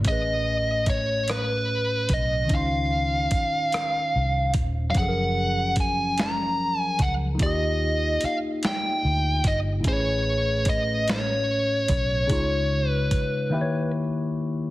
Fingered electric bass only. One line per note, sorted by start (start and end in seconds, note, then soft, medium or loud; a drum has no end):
0.06 2.06 A1 medium
2.10 2.46 B1 medium
2.51 3.28 C#2 medium
4.15 4.57 C2 medium
4.55 4.92 D#1 medium
4.96 6.95 F#1 medium
7.00 7.36 C#2 medium
7.41 8.18 D#2 medium
8.23 muted fingered electric bass stroke soft
9.05 9.41 D2 medium
9.45 9.81 G1 medium
9.85 11.85 A1 medium
11.90 12.26 B1 medium
12.30 13.08 C#2 medium
13.12 muted fingered electric bass stroke soft